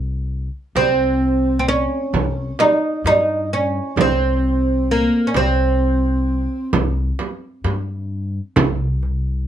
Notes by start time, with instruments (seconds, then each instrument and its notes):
Already playing: upright bass C2
0.75 upright bass C2, oud C4, frame drum
1.59 oud C4
1.68 oud C#4
2.13 upright bass C2, frame drum
2.59 oud D#4, frame drum
3.04 upright bass G2, oud D#4, frame drum
3.53 oud C#4
3.96 upright bass C2, frame drum
4.01 oud C4
4.91 oud A#3
5.27 oud C#4
5.34 upright bass C2, oud C4, frame drum
6.73 upright bass C2, frame drum
7.19 frame drum
7.64 upright bass G2, frame drum
8.56 upright bass C2, darbuka dum, frame drum
9.03 darbuka ka